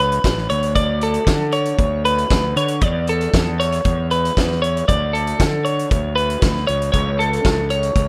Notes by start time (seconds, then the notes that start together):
Already playing: C#2
0.00 B4
0.12 closed hi-hat
0.24 A1, kick, snare, closed hi-hat
0.38 snare
0.50 D2 C#5, closed hi-hat
0.63 closed hi-hat
0.75 D5, kick, closed hi-hat
1.01 A4, closed hi-hat
1.14 closed hi-hat
1.27 D3, kick, snare, closed hi-hat
1.52 C#5, closed hi-hat
1.65 closed hi-hat
1.79 D2, kick, closed hi-hat
2.05 B4, closed hi-hat
2.18 closed hi-hat
2.30 D2, kick, snare, closed hi-hat
2.56 D3 C#5, closed hi-hat
2.68 closed hi-hat
2.81 E2 D5, kick, closed hi-hat
3.07 A4, closed hi-hat
3.21 closed hi-hat
3.34 E2, kick, snare, closed hi-hat
3.60 C#5, closed hi-hat
3.72 closed hi-hat
3.85 E2, kick, closed hi-hat
4.11 B4, closed hi-hat
4.25 closed hi-hat
4.37 E2, kick, snare, closed hi-hat
4.51 snare
4.62 C#5, closed hi-hat
4.77 closed hi-hat
4.88 D2 D5, kick, closed hi-hat
5.13 A4, closed hi-hat
5.27 closed hi-hat
5.40 D3, kick, snare, closed hi-hat
5.65 C#5, closed hi-hat
5.79 closed hi-hat
5.91 D2, kick, closed hi-hat
6.16 B4, closed hi-hat
6.30 closed hi-hat
6.42 D2, kick, snare, closed hi-hat
6.56 snare
6.67 C#2 C#5, closed hi-hat
6.82 closed hi-hat
6.92 C#2 C#5, kick, closed hi-hat
7.19 A4, closed hi-hat
7.33 closed hi-hat
7.45 C#2, kick, snare, closed hi-hat
7.70 C#5, closed hi-hat
7.83 closed hi-hat
7.96 C#2, kick, closed hi-hat